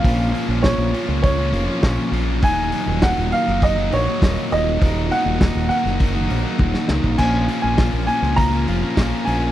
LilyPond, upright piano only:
\new Staff \with { instrumentName = "Upright piano" } { \time 4/4 \key ees \minor \tempo 4 = 101 f''4 des''4 des''4. r8 | aes''4 ges''8 f''8 ees''8 des''4 ees''8~ | ees''8 ges''4 ges''2 r8 | aes''8. aes''8. aes''8 bes''4. aes''8 | }